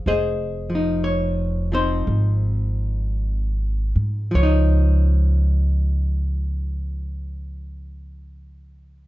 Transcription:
0.06 2.03 F1 medium
0.06 2.04 G#4 soft
0.06 0.75 C5 medium
0.06 1.04 D#5 medium
0.70 1.71 F3 soft
0.75 1.72 D#4 soft
1.04 1.74 C#5 medium
1.72 4.30 F3 soft
1.72 4.35 C4 soft
1.72 3.91 D#4 soft
1.72 3.92 C5 medium
2.07 3.91 G#1 medium
3.95 4.32 G#2 medium
4.31 9.07 C#2 medium
4.31 9.07 F3 medium
4.35 9.07 C#5 medium
4.43 9.07 D#4 medium

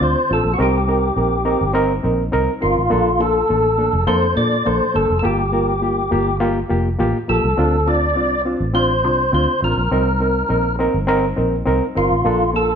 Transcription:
0.00 0.13 D2 medium
0.00 0.18 C4 medium
0.00 0.18 D4 medium
0.00 0.19 F4 medium
0.00 0.32 C5 medium
0.29 0.43 A1 medium
0.29 0.47 C4 medium
0.29 0.48 D4 medium
0.29 0.48 F4 medium
0.29 0.52 A4 medium
0.45 0.57 A#1 medium
0.54 0.60 F#4 medium
0.59 1.09 C2 loud
0.59 0.76 C4 medium
0.59 0.77 D#4 medium
0.59 1.73 G4 medium
0.59 0.77 A#4 loud
0.87 1.05 C4 medium
0.87 1.06 D#4 medium
0.87 1.06 A#4 medium
1.16 1.54 A#1 medium
1.16 1.34 C4 medium
1.16 1.35 D#4 medium
1.16 1.35 A#4 medium
1.45 1.63 C4 medium
1.45 1.63 D#4 medium
1.45 1.63 A#4 medium
1.61 1.98 G1 medium
1.74 1.92 C4 loud
1.74 1.92 D#4 medium
1.74 1.93 A#4 loud
2.03 2.29 A#1 medium
2.03 2.21 C4 medium
2.03 2.22 D#4 medium
2.03 2.22 A#4 medium
2.32 2.46 C2 medium
2.32 2.50 C4 medium
2.32 2.50 D#4 medium
2.32 2.51 A#4 loud
2.61 2.75 G1 loud
2.61 2.79 C4 medium
2.61 2.79 D#4 medium
2.61 3.22 F4 medium
2.61 2.80 A#4 medium
2.77 2.90 A1 medium
2.90 3.42 A#1 medium
2.90 3.08 A#3 medium
2.90 3.08 D4 medium
2.90 3.09 A4 loud
3.19 3.38 A#3 medium
3.19 3.38 D4 medium
3.19 4.04 A4 loud
3.19 3.38 A4 medium
3.49 3.88 A1 medium
3.49 3.67 A#3 medium
3.49 3.67 D4 medium
3.49 3.67 A4 medium
3.78 3.96 A#3 medium
3.78 3.96 D4 medium
3.78 3.96 A4 medium
3.93 4.06 F1 medium
4.07 4.33 F2 medium
4.07 4.25 A#3 medium
4.07 4.25 D4 medium
4.07 4.25 A4 loud
4.07 4.35 C5 loud
4.36 4.62 A#2 medium
4.36 4.54 A#3 medium
4.36 4.54 D4 medium
4.36 4.55 A4 medium
4.36 4.67 D5 medium
4.66 4.79 A#1 medium
4.66 4.83 A#3 medium
4.66 4.84 D4 medium
4.66 4.84 A4 medium
4.66 4.96 C5 medium
4.94 5.08 G1 medium
4.94 5.12 A#3 medium
4.94 5.13 D4 medium
4.94 5.13 A4 medium
4.94 5.18 A4 medium
5.10 5.23 F1 medium
5.19 5.41 A#3 medium
5.19 5.25 A4 medium
5.24 6.08 G1 medium
5.24 5.42 F4 medium
5.24 5.42 G4 medium
5.24 6.37 G4 medium
5.52 5.71 A#3 medium
5.52 5.71 F4 medium
5.52 5.71 A#4 medium
5.81 5.99 A#3 medium
5.81 6.00 F4 medium
5.81 6.00 G4 medium
6.11 6.62 G1 medium
6.11 6.29 A#3 medium
6.11 6.29 F4 medium
6.11 6.30 G4 medium
6.40 6.58 A#3 loud
6.40 6.58 F4 medium
6.40 6.59 G4 loud
6.69 6.96 F1 medium
6.69 6.87 A#3 medium
6.69 6.87 F4 medium
6.69 6.88 G4 medium
6.99 7.12 A1 medium
6.99 7.17 A#3 medium
6.99 7.17 F4 medium
6.99 7.17 G4 loud
7.28 7.42 A#1 medium
7.28 7.46 A#3 medium
7.28 7.46 F4 medium
7.28 7.47 G4 medium
7.28 7.89 A4 medium
7.44 7.56 C2 medium
7.57 8.17 D2 medium
7.57 7.75 C4 medium
7.57 7.75 D4 medium
7.57 7.76 F4 loud
7.86 8.04 C4 medium
7.86 8.05 D4 medium
7.86 8.05 F4 medium
7.86 8.42 D5 loud
8.16 8.54 C2 medium
8.16 8.33 C4 medium
8.16 8.34 D4 medium
8.16 8.34 F4 medium
8.45 8.63 C4 medium
8.45 8.63 D4 medium
8.45 8.63 F4 medium
8.60 9.04 A1 medium
8.73 8.92 C4 medium
8.73 8.92 D4 medium
8.73 8.92 F4 medium
8.73 9.33 C5 medium
9.04 9.29 C2 medium
9.04 9.21 C4 medium
9.04 9.22 D4 medium
9.04 9.22 F4 medium
9.32 9.45 D2 loud
9.32 9.50 C4 medium
9.32 9.50 D4 medium
9.32 9.51 F4 medium
9.32 9.61 C5 medium
9.62 9.75 A1 medium
9.62 9.80 C4 medium
9.62 9.80 D4 medium
9.62 9.80 F4 medium
9.62 10.76 A#4 medium
9.78 9.90 A#1 medium
9.91 10.42 C2 medium
9.91 10.09 C4 medium
9.91 10.09 D#4 medium
9.91 10.09 A#4 medium
10.20 10.38 C4 medium
10.20 10.38 D#4 medium
10.20 10.38 A#4 medium
10.49 10.87 A#1 medium
10.49 10.67 C4 medium
10.49 10.67 D#4 medium
10.49 10.67 A#4 medium
10.79 10.96 C4 medium
10.79 10.97 D#4 medium
10.79 10.97 A#4 loud
10.94 11.31 G1 medium
11.07 11.25 C4 loud
11.07 11.26 D#4 medium
11.07 11.26 A#4 loud
11.37 11.63 A#1 medium
11.37 11.54 C4 medium
11.37 11.55 D#4 medium
11.37 11.55 A#4 medium
11.66 11.79 C2 medium
11.66 11.83 C4 medium
11.66 11.84 D#4 medium
11.66 11.84 A#4 loud
11.95 12.09 G1 medium
11.95 12.13 C4 medium
11.95 12.13 D#4 medium
11.95 12.51 F4 medium
11.95 12.13 A#4 medium
12.11 12.23 A1 medium
12.25 12.75 A#1 medium
12.25 12.42 A#3 medium
12.25 12.43 D4 medium
12.25 12.43 A4 loud
12.54 12.71 A#3 medium
12.54 12.71 D4 medium
12.54 12.72 A4 medium
12.54 12.75 A4 loud

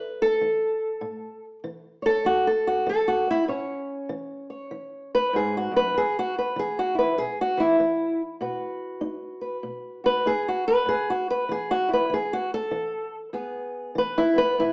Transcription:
0.00 0.37 E3 medium
0.00 0.21 B4 medium
0.22 1.44 A4 loud
0.41 0.98 E3 medium
1.01 1.59 A2 medium
1.64 2.21 E3 medium
2.02 2.26 A4 loud
2.02 2.26 C#5 medium
2.25 2.82 E3 medium
2.25 2.46 F#4 loud
2.47 2.67 A4 medium
2.67 2.87 F#4 medium
2.86 3.43 E3 medium
2.86 3.09 A4 loud
3.08 3.28 F#4 medium
3.31 3.48 E4 loud
3.48 4.05 A2 medium
3.48 5.91 C#4 medium
3.48 4.49 C#5 medium
4.09 4.66 E3 medium
4.50 5.13 C#5 soft
4.71 5.28 E3 medium
5.15 5.34 B4 loud
5.33 5.71 G#2 medium
5.33 5.55 G#4 medium
5.57 5.76 F#4 medium
5.71 5.94 F#2 medium
5.76 5.96 B4 loud
5.94 6.51 E2 medium
5.94 6.16 G#4 loud
6.19 6.37 F#4 medium
6.38 6.57 B4 medium
6.56 7.13 E3 medium
6.56 6.78 G#4 medium
6.79 6.98 F#4 medium
6.95 7.17 E4 soft
6.95 7.18 B4 medium
7.18 7.75 B2 medium
7.18 7.38 G#4 medium
7.41 7.60 F#4 medium
7.57 7.79 E3 soft
7.57 8.21 E4 medium
7.80 8.37 E3 medium
8.41 8.98 B2 medium
8.41 10.03 F#4 soft
8.41 9.40 B4 soft
9.01 9.59 D#4 medium
9.41 10.05 B4 soft
9.63 10.21 B2 medium
10.04 10.26 F#4 soft
10.04 10.26 B4 loud
10.26 10.83 D#4 medium
10.26 10.47 G#4 loud
10.48 10.67 F#4 medium
10.68 10.88 B4 loud
10.86 11.44 A2 medium
10.86 11.09 G#4 loud
11.10 11.30 F#4 medium
11.30 11.50 B4 medium
11.49 12.06 E3 medium
11.49 11.71 G#4 medium
11.71 11.91 F#4 loud
11.89 12.13 E4 soft
11.93 12.12 B4 loud
12.10 12.67 E3 medium
12.10 12.33 G#4 medium
12.33 12.53 F#4 loud
12.54 13.15 A4 loud
12.71 13.29 E3 medium
13.33 13.91 E2 medium
13.33 14.35 B3 medium
13.33 13.96 G#4 soft
13.95 14.53 E3 medium
13.95 14.18 B4 loud
14.18 14.38 E4 loud
14.35 14.73 B3 soft
14.35 14.58 B4 loud
14.58 14.73 B2 medium
14.58 14.73 E4 loud

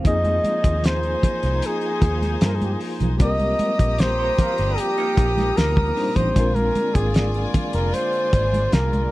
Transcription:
0.01 0.38 F2 loud
0.01 3.14 F3 medium
0.01 3.15 A#3 medium
0.01 3.16 C4 medium
0.01 3.17 G#4 medium
0.01 kick loud
0.01 closed hi-hat medium
0.05 6.32 F3 medium
0.05 9.12 A#3 medium
0.05 3.17 D#4 medium
0.05 6.32 F4 medium
0.05 3.18 G#4 medium
0.05 3.17 C5 medium
0.05 0.87 D#5 loud
0.05 3.17 G#5 medium
0.24 closed hi-hat soft
0.24 high conga medium
0.44 closed hi-hat medium
0.44 high conga medium
0.64 1.14 D#2 medium
0.64 kick loud
0.64 closed hi-hat medium
0.83 1.68 C5 loud
0.83 snare loud
0.83 closed hi-hat loud
0.83 high conga soft
1.03 closed hi-hat soft
1.03 muted conga soft
1.23 muted fingered electric bass stroke soft
1.23 kick loud
1.23 closed hi-hat medium
1.23 low conga medium
1.43 1.60 C2 medium
1.43 snare soft
1.43 closed hi-hat medium
1.62 2.47 G#4 medium
1.62 closed hi-hat loud
1.81 closed hi-hat soft
2.02 2.35 D#2 loud
2.02 kick loud
2.02 closed hi-hat medium
2.22 snare soft
2.22 closed hi-hat soft
2.22 high conga medium
2.41 2.75 G2 medium
2.41 snare loud
2.41 closed hi-hat loud
2.46 2.56 A#4 medium
2.55 2.66 G#4 medium
2.61 2.74 G4 medium
2.61 closed hi-hat soft
2.61 high conga medium
2.73 2.81 G#4 medium
2.80 open hi-hat medium
3.00 3.20 B1 medium
3.00 closed hi-hat medium
3.00 low conga medium
3.17 3.54 C2 loud
3.17 5.91 G3 medium
3.17 5.92 C4 medium
3.17 6.33 C4 medium
3.17 6.32 G4 medium
3.17 6.32 A#5 loud
3.17 6.32 D#6 medium
3.17 kick loud
3.17 closed hi-hat medium
3.17 muted conga soft
3.21 5.93 A#3 medium
3.21 5.94 G4 medium
3.21 5.95 A#4 medium
3.21 4.02 D#5 loud
3.39 closed hi-hat soft
3.39 muted conga soft
3.39 high conga medium
3.59 closed hi-hat medium
3.59 high conga medium
3.79 4.30 A#1 medium
3.79 kick loud
3.79 closed hi-hat medium
3.98 4.80 C5 loud
3.98 snare loud
3.98 closed hi-hat medium
3.98 muted conga soft
3.98 high conga soft
4.19 4.38 G4 medium
4.19 4.38 C5 medium
4.38 4.58 F4 medium
4.38 4.58 A#4 medium
4.38 muted fingered electric bass stroke soft
4.38 kick medium
4.38 closed hi-hat medium
4.38 low conga medium
4.58 4.75 G1 medium
4.58 4.96 D4 medium
4.58 4.96 G4 medium
4.58 snare soft
4.58 closed hi-hat medium
4.78 5.58 G4 loud
4.78 closed hi-hat loud
4.98 6.12 A#3 medium
4.98 6.12 D#4 medium
4.98 closed hi-hat soft
5.17 5.51 A#1 medium
5.17 kick loud
5.17 closed hi-hat medium
5.37 snare soft
5.37 closed hi-hat soft
5.37 high conga medium
5.57 5.91 D2 loud
5.57 6.17 A#4 loud
5.57 snare loud
5.57 closed hi-hat loud
5.76 kick loud
5.76 high conga medium
5.95 6.35 G3 medium
5.95 6.34 C4 soft
5.95 6.35 D4 soft
5.95 6.36 D#4 soft
5.95 6.37 C5 medium
5.95 open hi-hat medium
6.16 6.33 A1 medium
6.16 6.56 C5 medium
6.16 kick loud
6.16 closed hi-hat medium
6.16 low conga medium
6.33 6.69 A#1 loud
6.33 9.12 D3 medium
6.33 9.12 G#3 medium
6.33 9.12 C4 medium
6.33 9.12 D4 medium
6.33 9.12 F4 medium
6.33 9.12 D5 medium
6.33 9.12 G#5 loud
6.33 kick loud
6.33 closed hi-hat medium
6.33 muted conga soft
6.38 9.12 F4 medium
6.38 9.12 A#4 medium
6.55 6.96 A#4 loud
6.55 closed hi-hat soft
6.55 muted conga soft
6.55 high conga medium
6.75 closed hi-hat medium
6.75 high conga medium
6.95 7.45 G#1 medium
6.95 7.47 G#4 medium
6.95 kick loud
6.95 closed hi-hat medium
7.14 snare loud
7.14 closed hi-hat medium
7.14 muted conga soft
7.14 high conga soft
7.34 closed hi-hat soft
7.34 muted conga soft
7.54 muted fingered electric bass stroke soft
7.54 kick loud
7.54 closed hi-hat medium
7.54 low conga medium
7.73 7.91 F1 medium
7.73 7.95 A#4 medium
7.73 snare soft
7.73 closed hi-hat medium
7.94 8.75 C5 loud
7.94 closed hi-hat loud
7.94 muted conga soft
8.13 closed hi-hat soft
8.33 8.66 G#1 loud
8.33 kick loud
8.33 closed hi-hat medium
8.53 closed hi-hat soft
8.53 high conga medium
8.72 9.06 C2 loud
8.72 9.12 A#4 medium
8.72 snare loud
8.72 closed hi-hat medium
8.72 muted conga soft
8.93 closed hi-hat soft
8.93 muted conga soft
8.93 high conga medium

